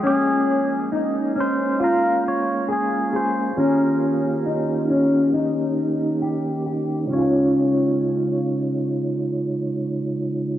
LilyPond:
<<
  \new Staff \with { instrumentName = "Pedal steel guitar" } { \time 4/4 \key des \lydian \tempo 4 = 68 aes'4 r8 c''8 bes'8 des''8 aes'8 c''8 | bes'2. r4 | des''1 | }
  \new Staff \with { instrumentName = "Clean electric guitar" } { \time 4/4 \key des \lydian des'4 ees'8 des'8 f'4 aes'8 aes'8 | des'4 ees'8 des'8 ees'4 g'8 g'8 | <des' f' aes' des''>1 | }
  \new Staff \with { instrumentName = "Tonewheel organ" } { \time 4/4 \key des \lydian << { <aes des'>1 | <ees bes des' g'>1 | <des aes ees' f' des''>1 | } \\ { bes1 | f'2 ees'2 | r1 | } >> }
>>